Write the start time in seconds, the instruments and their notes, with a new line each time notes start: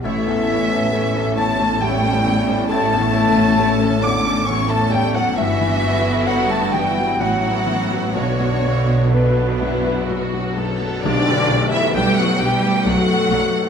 0.03 felt piano A1 E5, double bass section A1, harp A2, cello section A2, french horn section E3, viola section A3 E4, violin section C#5 E5, flute E5
0.26 felt piano E2, viola section C#4, violin section A4
0.33 harp C#4
0.48 felt piano A3, viola section A3 E4, violin section C#5
0.63 harp B3
0.70 viola section C#4, felt piano C#4, violin section A4
0.93 viola section A3 E4, harp C#4, felt piano A4, violin section C#5
1.15 felt piano C#4, viola section C#4, violin section A4
1.21 harp E5
1.36 felt piano E2 A5, french horn section A3, viola section A3 E4, violin section C#5 A5, flute A5
1.59 felt piano A3, viola section C#4, violin section A4
1.80 felt piano E2 G5, french horn section G3, viola section A3 E4, harp E4, violin section C#5 G5, flute G5
2.03 felt piano A3, viola section C#4, violin section A4
2.09 harp E5
2.25 felt piano E2, viola section A3 E4, violin section C#5
2.39 harp C#4
2.47 felt piano A3, viola section C#4, violin section A4
2.68 felt piano A1 A5, harp A2, french horn section A3, viola section A3 E4, violin section C#5 A5, flute A5
2.91 felt piano E2, viola section C#4, violin section A4
2.99 harp E3
3.13 viola section A3 E4, felt piano A3, violin section C#5
3.28 harp D3
3.36 viola section C#4, felt piano C#4, violin section A4
3.57 viola section A3 E4, harp C#4, felt piano A4, violin section C#5
3.80 viola section C#4, felt piano C#4, violin section A4
3.87 harp E5
4.01 french horn section D3, viola section A3 E4, violin section C#5 D6, flute D6, felt piano D6
4.06 felt piano E2
4.19 harp C#4
4.25 felt piano A3, viola section C#4, violin section A4
4.45 viola section A3 E4, french horn section C#4, harp E4, violin section C#5 C#6, felt piano C#6, flute C#6
4.50 felt piano E2
4.68 french horn section A3, felt piano A3 A5, viola section C#4, violin section A4 A5, flute A5
4.77 harp E5
4.90 french horn section G3, viola section A3 E4, violin section C#5 G5, flute G5, felt piano G5
4.94 felt piano E2
5.08 harp C#4
5.13 french horn section F#3, felt piano A3 F#5, viola section C#4, violin section A4 F#5, flute F#5
5.36 double bass section G1, cello section G2, harp G2, felt piano G2 E5, french horn section E3, viola section B3 E4, violin section F#4 E5, flute E5
5.61 felt piano E3
5.67 harp B3
5.82 felt piano F#3
5.97 harp A3
6.06 felt piano B3
6.25 french horn section F#3, harp B3, felt piano B4 F#5, flute F#5, violin section F#5
6.49 french horn section A3, felt piano B3 A5, violin section A5, flute A5
6.58 harp E5
6.72 felt piano E3 G5, french horn section G3, flute G5, violin section G5
6.88 harp B3
6.98 felt piano F#3
7.18 double bass section A1, cello section A2, felt piano E3 F#5, french horn section F#3, viola section B3 E4, violin section F#4 F#5, flute F#5
7.42 felt piano F#3
7.51 harp E5
7.66 felt piano E3
7.83 harp B3
7.91 felt piano F#3
8.13 felt piano B1 C#5, double bass section B1, cello section B2, harp B2, french horn section D3, viola section B3 D4, violin section F#4 C#5, flute C#5
8.40 felt piano F#2
8.47 harp B3
8.65 felt piano F#3
8.80 harp A3
8.88 felt piano B3
9.09 french horn section B2, harp B3, viola section B3 D4, violin section D4 B4, felt piano B4
9.13 flute B4
9.38 felt piano B3
9.44 harp D5
9.57 violin section E4
9.62 felt piano F#2
9.77 harp B3
9.86 felt piano F#3
10.07 felt piano F#2, harp D4, violin section F#4
10.34 felt piano F#3
10.40 harp D5
10.55 felt piano F#2, violin section A4
10.73 harp B3
10.80 felt piano F#3
11.03 double bass section B1, felt piano B1, harp B2, cello section D3, viola section A3 D4, violin section D4 D5, tam-tam
11.28 felt piano F#2
11.34 harp B3
11.48 double bass section B1, viola section A3 D4, felt piano A3
11.65 harp A3
11.71 cello section E3, felt piano B3, violin section E4 E5
11.94 double bass section B1, cello section G3, viola section A3 D4, harp B3, violin section G4 G5, felt piano B4
12.16 cello section F#3, felt piano B3, violin section F#4 F#5
12.25 harp D5
12.40 double bass section B1, cello section G3, viola section A3 D4, violin section G4 G5
12.55 harp B3
12.63 felt piano A3
12.84 double bass section B1, felt piano F#2, cello section F#3, viola section A3 D4, violin section F#4 F#5, harp A4
13.08 felt piano A3
13.15 harp D5
13.30 double bass section B1, felt piano F#2, viola section A3 D4
13.45 harp B3
13.52 felt piano A3